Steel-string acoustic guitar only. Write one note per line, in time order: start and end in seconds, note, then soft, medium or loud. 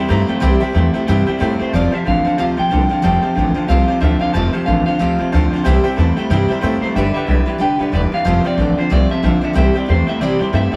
0.09 0.28 G3 medium
0.09 0.28 C4 medium
0.09 0.27 E4 medium
0.09 0.26 C5 medium
0.27 0.41 G3 soft
0.27 0.41 C4 medium
0.27 0.41 E4 medium
0.27 0.41 C5 medium
0.40 0.60 C3 medium
0.40 0.61 E3 medium
0.40 0.61 G3 loud
0.40 0.61 C4 loud
0.40 0.60 E4 loud
0.40 0.59 C5 loud
0.60 0.72 G3 soft
0.60 0.73 C4 soft
0.60 0.74 E4 medium
0.60 0.74 C5 medium
0.73 0.93 G3 medium
0.73 0.94 C4 medium
0.73 0.94 E4 medium
0.77 0.93 C5 medium
0.94 1.07 G3 medium
0.94 1.08 C4 medium
0.94 1.08 E4 medium
0.94 1.07 C5 medium
1.07 1.27 C3 medium
1.07 1.27 E3 loud
1.07 1.27 G3 medium
1.07 1.26 C4 medium
1.07 1.25 E4 loud
1.07 1.25 C5 loud
1.26 1.37 G3 soft
1.26 1.39 C4 medium
1.26 1.40 E4 medium
1.26 1.40 C5 medium
1.38 1.59 G3 medium
1.38 1.59 C4 medium
1.38 1.59 E4 medium
1.38 1.58 C5 medium
1.59 1.74 G3 soft
1.59 1.74 C4 soft
1.59 1.73 E4 soft
1.59 1.73 C5 medium
1.73 1.93 F3 medium
1.73 1.93 A3 medium
1.73 1.93 C4 medium
1.73 1.94 F4 loud
1.73 1.91 C5 medium
1.92 2.05 C4 soft
1.92 2.07 F4 soft
1.92 2.06 C5 soft
2.05 2.25 A3 medium
2.05 2.25 C4 medium
2.05 2.26 F4 medium
2.05 2.23 C5 medium
2.25 2.38 F4 medium
2.25 2.38 C5 medium
2.29 2.38 C4 soft
2.38 2.58 F3 medium
2.38 2.58 A3 medium
2.38 2.58 C4 medium
2.38 2.58 F4 medium
2.38 2.56 C5 medium
2.57 2.70 C4 soft
2.57 2.71 F4 soft
2.57 2.70 C5 medium
2.69 2.89 A3 medium
2.69 2.90 C4 medium
2.69 2.90 F4 medium
2.69 2.88 C5 medium
2.89 3.02 C4 soft
2.89 3.03 F4 medium
2.89 3.03 C5 medium
3.02 3.22 F3 medium
3.02 3.23 A3 medium
3.02 3.23 C4 loud
3.02 3.23 F4 medium
3.02 3.21 C5 loud
3.23 3.37 F4 soft
3.23 3.36 C5 medium
3.35 3.55 A3 medium
3.35 3.56 C4 medium
3.35 3.55 F4 medium
3.35 3.53 C5 medium
3.54 3.68 C4 medium
3.54 3.69 F4 medium
3.54 3.68 C5 medium
3.68 3.88 F3 medium
3.68 3.88 A3 medium
3.68 3.89 C4 medium
3.68 3.89 F4 medium
3.68 3.87 C5 medium
3.88 4.00 C4 soft
3.88 4.02 F4 medium
3.88 4.01 C5 medium
4.00 4.20 A3 medium
4.00 4.21 C4 medium
4.00 4.20 F4 medium
4.00 4.18 C5 medium
4.19 4.34 C4 soft
4.19 4.34 F4 medium
4.19 4.33 C5 medium
4.34 4.53 F3 medium
4.34 4.54 A3 medium
4.34 4.54 C4 medium
4.34 4.53 F4 loud
4.34 4.52 C5 medium
4.53 4.66 C4 soft
4.53 4.67 F4 soft
4.53 4.66 C5 medium
4.66 4.86 A3 medium
4.66 4.86 C4 medium
4.66 4.87 F4 medium
4.66 4.84 C5 medium
4.86 4.99 C4 soft
4.86 4.99 F4 medium
4.86 4.99 C5 medium
4.99 5.19 F3 medium
4.99 5.19 A3 medium
4.99 5.19 C4 medium
4.99 5.19 F4 medium
4.99 5.17 C5 medium
5.18 5.33 C4 soft
5.18 5.33 F4 soft
5.18 5.32 C5 medium
5.33 5.52 A3 medium
5.33 5.52 C4 medium
5.33 5.53 F4 medium
5.33 5.52 C5 medium
5.53 5.65 C4 medium
5.53 5.66 F4 medium
5.53 5.65 C5 medium
5.65 5.84 C3 medium
5.65 5.84 E3 loud
5.65 5.85 G3 loud
5.65 5.85 C4 loud
5.65 5.85 E4 loud
5.65 5.83 C5 loud
5.84 5.95 G3 soft
5.84 5.97 C4 medium
5.84 5.98 E4 medium
5.84 5.97 C5 medium
5.96 6.16 G3 medium
5.96 6.17 C4 medium
5.96 6.17 E4 medium
5.96 6.15 C5 medium
6.17 6.30 G3 medium
6.17 6.30 C4 medium
6.17 6.30 E4 medium
6.17 6.30 C5 medium
6.30 6.49 C3 medium
6.30 6.50 E3 medium
6.30 6.50 G3 medium
6.30 6.50 C4 medium
6.30 6.49 E4 loud
6.30 6.47 C5 loud
6.48 6.60 G3 medium
6.48 6.62 C4 medium
6.48 6.63 E4 medium
6.48 6.62 C5 medium
6.61 6.81 G3 medium
6.61 6.82 C4 medium
6.61 6.82 E4 medium
6.61 6.81 C5 medium
6.82 6.95 G3 soft
6.82 6.96 C4 soft
6.82 6.96 E4 medium
6.82 6.95 C5 medium
6.96 7.15 G3 medium
6.96 7.15 D4 medium
6.96 7.15 G4 medium
6.96 7.13 B4 medium
7.14 7.27 D4 soft
7.14 7.28 G4 medium
7.14 7.27 B4 medium
7.27 7.47 G3 medium
7.27 7.47 D4 medium
7.27 7.47 G4 medium
7.27 7.45 B4 medium
7.46 7.58 D4 soft
7.46 7.59 G4 medium
7.46 7.60 B4 medium
7.58 7.79 G3 medium
7.58 7.79 D4 medium
7.58 7.79 G4 medium
7.58 7.78 B4 medium
7.79 7.92 D4 soft
7.79 7.93 G4 medium
7.79 7.93 B4 medium
7.92 8.12 G3 medium
7.92 8.12 D4 medium
7.92 8.12 G4 medium
7.92 8.11 B4 medium
8.12 8.26 D4 soft
8.12 8.26 G4 medium
8.12 8.25 B4 medium
8.25 8.44 F3 medium
8.25 8.45 A3 medium
8.25 8.45 C4 medium
8.25 8.45 F4 medium
8.25 8.43 C5 loud
8.44 8.58 C4 soft
8.44 8.59 F4 medium
8.44 8.58 C5 medium
8.57 8.77 A3 medium
8.57 8.78 C4 medium
8.57 8.78 F4 medium
8.57 8.77 C5 medium
8.78 8.90 C4 soft
8.78 8.90 F4 medium
8.78 8.91 C5 medium
8.90 9.10 F3 medium
8.90 9.10 A3 medium
8.90 9.10 C4 medium
8.90 9.10 F4 medium
8.90 9.08 C5 medium
9.09 9.22 C4 medium
9.09 9.23 F4 soft
9.09 9.23 C5 medium
9.22 9.42 A3 medium
9.22 9.43 C4 medium
9.22 9.42 F4 medium
9.22 9.40 C5 medium
9.41 9.54 C4 medium
9.41 9.55 F4 medium
9.41 9.54 C5 medium
9.53 9.74 C3 medium
9.53 9.74 E3 medium
9.53 9.75 G3 medium
9.53 9.74 C4 medium
9.53 9.73 E4 loud
9.53 9.72 C5 loud
9.73 9.87 C4 soft
9.73 9.87 E4 medium
9.73 9.87 C5 medium
9.77 9.85 G3 soft
9.86 10.07 G3 medium
9.86 10.08 C4 medium
9.86 10.07 E4 medium
9.86 10.06 C5 medium
10.07 10.20 G3 soft
10.07 10.21 C4 medium
10.07 10.21 E4 medium
10.07 10.20 C5 medium
10.21 10.40 C3 medium
10.21 10.40 E3 medium
10.21 10.41 G3 medium
10.21 10.41 C4 loud
10.21 10.40 E4 loud
10.21 10.38 C5 medium
10.39 10.52 G3 soft
10.39 10.53 C4 soft
10.39 10.54 E4 medium
10.39 10.53 C5 medium
10.53 10.72 G3 medium
10.53 10.73 C4 medium
10.53 10.72 E4 medium
10.53 10.70 C5 medium
10.72 10.76 E4 medium
10.72 10.76 C5 medium